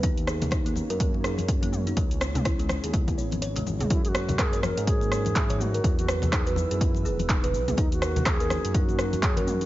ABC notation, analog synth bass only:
X:1
M:4/4
L:1/16
Q:"Swing 16ths" 1/4=124
K:F#mix
V:1 name="Analog synth bass" clef=bass
D,,6- D,, F,,8- F,, | C,,6- C,, D,,3 G,,,4 G,,, z | F,,6- F,, G,,8- G,, | E,,6- E,, F,,3 E,,,4 B,,, z |
D,,6- D,, F,,8- F,, |]